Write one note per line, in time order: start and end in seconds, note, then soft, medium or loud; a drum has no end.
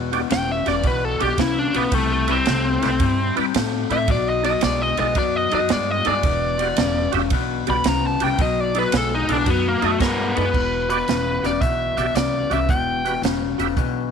0.00 0.22 E1 medium
0.11 0.28 E2 medium
0.11 0.29 B2 medium
0.11 0.21 F#4 medium
0.11 0.22 G4 medium
0.11 0.22 D5 medium
0.11 ride medium
0.30 0.61 E1 medium
0.30 0.63 E2 medium
0.30 0.63 C#3 medium
0.30 0.49 G5 loud
0.30 snare loud
0.30 ride medium
0.51 0.68 E5 medium
0.66 0.82 E1 medium
0.66 0.83 E2 medium
0.66 0.83 C#3 medium
0.66 0.75 F#4 medium
0.66 0.76 G4 medium
0.66 0.76 D5 medium
0.66 0.85 D5 medium
0.66 snare soft
0.66 ride medium
0.83 1.15 B1 medium
0.83 1.17 E2 medium
0.83 1.17 B2 medium
0.83 1.05 B4 loud
0.83 kick medium
0.83 ride medium
1.05 1.21 A4 medium
1.20 1.36 B1 medium
1.20 1.37 E2 medium
1.20 1.37 B2 medium
1.20 1.29 F#4 medium
1.20 1.30 G4 medium
1.20 1.40 G4 medium
1.20 1.30 D5 medium
1.20 ride medium
1.38 1.69 C2 medium
1.38 1.71 E2 medium
1.38 1.71 C#3 medium
1.38 1.59 E4 medium
1.38 kick medium
1.38 snare loud
1.38 ride medium
1.59 1.75 D4 medium
1.73 1.90 B1 medium
1.73 1.91 E2 medium
1.73 1.91 C#3 medium
1.73 1.94 B3 medium
1.73 1.83 F#4 medium
1.73 1.84 G4 medium
1.73 1.84 D5 medium
1.73 ride medium
1.92 2.38 C2 medium
1.92 2.25 C3 medium
1.92 2.25 G3 medium
1.92 2.11 A3 medium
1.92 kick loud
1.92 ride medium
2.13 2.31 A3 medium
2.28 2.45 C3 medium
2.28 2.45 G3 medium
2.28 3.34 C4 loud
2.28 2.37 E4 medium
2.28 2.38 B4 medium
2.28 2.38 D5 medium
2.28 ride medium
2.45 2.78 C2 loud
2.45 2.79 C3 medium
2.45 2.79 A3 medium
2.45 snare loud
2.45 ride medium
2.81 2.98 C2 medium
2.81 2.99 C3 medium
2.81 2.99 A3 medium
2.81 2.91 E4 medium
2.81 2.91 B4 medium
2.81 2.92 D5 medium
2.81 snare soft
2.81 ride medium
3.00 3.31 G2 loud
3.00 3.33 C3 medium
3.00 3.34 G3 medium
3.00 kick loud
3.00 ride medium
3.35 3.52 G2 medium
3.35 3.53 C3 medium
3.35 3.53 G3 medium
3.35 3.45 E4 medium
3.35 3.46 B4 medium
3.35 3.46 D5 loud
3.35 ride medium
3.54 3.85 A2 medium
3.54 3.87 C3 medium
3.54 3.87 A3 loud
3.54 snare loud
3.54 ride medium
3.89 4.09 A2 medium
3.89 4.07 C3 medium
3.89 4.07 A3 medium
3.89 3.99 E4 medium
3.89 3.99 B4 medium
3.89 4.00 E5 medium
3.89 4.09 E5 loud
3.89 ride medium
4.08 4.53 B1 medium
4.08 4.41 B2 medium
4.08 4.41 F#3 medium
4.08 4.27 D5 loud
4.08 kick loud
4.08 ride medium
4.29 4.45 D#5 medium
4.43 4.61 B2 medium
4.43 4.61 F#3 medium
4.43 4.52 D#4 medium
4.43 4.53 A4 medium
4.43 4.53 D5 medium
4.43 4.62 D#5 loud
4.43 ride medium
4.61 4.93 B1 loud
4.61 4.95 B2 medium
4.61 4.95 G#3 medium
4.61 4.82 D5 medium
4.61 snare loud
4.61 ride medium
4.82 4.98 D#5 medium
4.97 5.14 B1 medium
4.97 5.14 B2 medium
4.97 5.15 G#3 medium
4.97 5.07 D#4 medium
4.97 5.07 A4 medium
4.97 5.07 D5 medium
4.97 5.16 D#5 medium
4.97 ride medium
5.15 5.46 F#2 loud
5.15 5.48 B2 medium
5.15 5.49 F#3 medium
5.15 5.36 D5 medium
5.15 kick loud
5.15 ride medium
5.36 5.52 D#5 medium
5.51 5.67 F#2 medium
5.51 5.68 B2 medium
5.51 5.69 F#3 medium
5.51 5.60 D#4 medium
5.51 5.61 A4 medium
5.51 5.61 D#5 medium
5.51 5.71 D#5 loud
5.51 ride medium
5.69 6.01 G2 medium
5.69 6.02 B2 medium
5.69 6.03 G#3 medium
5.69 5.90 D5 medium
5.69 snare loud
5.69 ride medium
5.90 6.07 D#5 medium
6.05 6.21 G2 medium
6.05 6.23 B2 medium
6.05 6.23 G#3 medium
6.05 6.14 D#4 medium
6.05 6.15 A4 medium
6.05 7.11 D5 medium
6.05 6.15 D#5 medium
6.05 ride medium
6.23 6.69 E1 medium
6.23 6.56 E2 medium
6.23 6.56 B2 medium
6.23 kick loud
6.23 ride medium
6.58 6.76 E2 medium
6.58 6.76 B2 medium
6.58 6.68 F#4 medium
6.58 6.68 G4 medium
6.58 6.69 D5 medium
6.58 ride medium
6.76 7.08 E1 loud
6.76 7.10 E2 medium
6.76 7.11 C#3 medium
6.76 snare loud
6.76 ride medium
7.12 7.29 E1 medium
7.12 7.30 E2 medium
7.12 7.30 C#3 loud
7.12 7.22 F#4 medium
7.12 7.22 G4 medium
7.12 7.23 E5 loud
7.12 ride medium
7.30 7.61 B1 loud
7.30 7.64 E2 medium
7.30 7.65 B2 loud
7.30 kick loud
7.30 ride medium
7.67 7.83 B1 loud
7.67 7.84 E2 medium
7.67 7.84 B2 loud
7.67 7.76 F#4 medium
7.67 7.76 G4 medium
7.67 7.77 D5 medium
7.67 7.86 B5 loud
7.67 ride medium
7.84 8.15 C2 medium
7.84 8.18 E2 medium
7.84 8.18 C#3 loud
7.84 snare loud
7.84 ride medium
7.88 8.04 A#5 medium
8.07 8.24 A5 medium
8.20 8.37 C2 medium
8.20 8.38 E2 medium
8.20 8.38 C#3 medium
8.20 8.30 F#4 medium
8.20 8.30 G4 medium
8.20 8.31 D5 medium
8.20 8.40 G5 medium
8.20 ride medium
8.39 8.84 B1 medium
8.39 8.71 B2 medium
8.39 8.72 F#3 medium
8.39 8.60 D#5 loud
8.39 kick loud
8.39 ride medium
8.60 8.76 D5 medium
8.74 8.91 B2 medium
8.74 8.92 F#3 medium
8.74 8.84 D#4 medium
8.74 8.84 A4 medium
8.74 8.84 D5 medium
8.74 ride medium
8.79 8.94 B4 medium
8.92 9.23 B1 loud
8.92 9.25 B2 medium
8.92 9.25 G#3 medium
8.92 snare loud
8.92 ride medium
8.97 9.12 A4 medium
9.15 9.32 D#4 medium
9.28 9.44 B1 medium
9.28 9.45 B2 medium
9.28 9.45 G#3 medium
9.28 9.37 D#4 medium
9.28 9.38 A4 medium
9.28 9.38 D5 medium
9.28 ride medium
9.32 9.50 D4 medium
9.46 9.77 F#2 loud
9.46 9.79 B2 medium
9.46 9.79 F#3 loud
9.46 kick loud
9.46 ride medium
9.50 9.66 B3 medium
9.68 9.86 A#3 medium
9.81 9.98 F#2 medium
9.81 9.98 B2 medium
9.81 9.99 F#3 medium
9.81 9.91 D#4 medium
9.81 9.91 A4 medium
9.81 9.92 D#5 medium
9.81 ride medium
9.86 10.01 A3 loud
10.00 10.31 G2 medium
10.00 10.32 B2 medium
10.00 10.33 G#3 medium
10.00 10.54 B3 loud
10.00 10.34 A#4 medium
10.00 kick medium
10.00 snare loud
10.00 ride medium
10.36 10.52 F#2 medium
10.36 10.52 B2 medium
10.36 10.52 G#3 medium
10.36 10.45 D#4 medium
10.36 10.45 A4 medium
10.36 10.87 B4 medium
10.36 10.46 D5 medium
10.36 ride medium
10.54 11.00 E1 medium
10.54 10.87 E2 medium
10.54 10.87 B2 medium
10.54 kick loud
10.54 crash loud
10.89 11.06 E2 medium
10.89 11.06 B2 medium
10.89 10.98 F#4 medium
10.89 10.99 G4 medium
10.89 11.45 B4 medium
10.89 10.99 D5 medium
10.89 closed hi-hat medium
11.08 11.39 E1 medium
11.08 11.40 E2 medium
11.08 11.41 C#3 medium
11.08 snare loud
11.08 closed hi-hat medium
11.42 11.59 E1 medium
11.42 11.60 E2 medium
11.42 11.60 C#3 medium
11.42 11.52 F#4 medium
11.42 11.52 G4 medium
11.42 11.53 D5 medium
11.42 11.61 D5 medium
11.42 snare soft
11.42 closed hi-hat medium
11.61 11.92 B1 medium
11.61 11.94 E2 medium
11.61 11.95 B2 medium
11.61 11.97 E5 medium
11.61 kick loud
11.61 closed hi-hat medium
11.97 12.13 B1 medium
11.97 12.14 E2 medium
11.97 12.14 B2 medium
11.97 12.06 F#4 medium
11.97 12.06 G4 medium
11.97 12.07 D5 medium
11.97 12.16 E5 loud
11.97 closed hi-hat medium
12.14 12.45 C2 medium
12.14 12.48 E2 medium
12.14 12.48 C#3 medium
12.14 12.49 D5 medium
12.14 snare loud
12.14 closed hi-hat medium
12.50 12.66 C2 medium
12.50 12.67 E2 medium
12.50 12.68 C#3 medium
12.50 12.60 F#4 medium
12.50 12.60 G4 medium
12.50 12.60 D5 medium
12.50 12.71 E5 medium
12.50 closed hi-hat medium
12.69 13.15 E1 medium
12.69 13.02 E2 medium
12.69 13.02 B2 medium
12.69 13.20 G5 medium
12.69 kick loud
12.69 closed hi-hat medium
13.04 13.21 E2 medium
13.04 13.22 B2 medium
13.04 13.14 F#4 medium
13.04 13.14 G4 medium
13.04 13.15 B4 medium
13.04 closed hi-hat medium
13.22 13.53 E1 medium
13.22 13.56 E2 medium
13.22 13.56 C#3 medium
13.22 snare loud
13.22 closed hi-hat medium
13.58 13.74 E1 medium
13.58 13.75 E2 medium
13.58 13.75 C#3 medium
13.58 13.68 F#4 medium
13.58 13.68 G4 medium
13.58 13.68 E5 medium
13.58 closed hi-hat medium
13.77 14.07 B1 medium
13.77 14.09 E2 medium
13.77 14.09 B2 loud
13.77 kick loud
13.77 closed hi-hat medium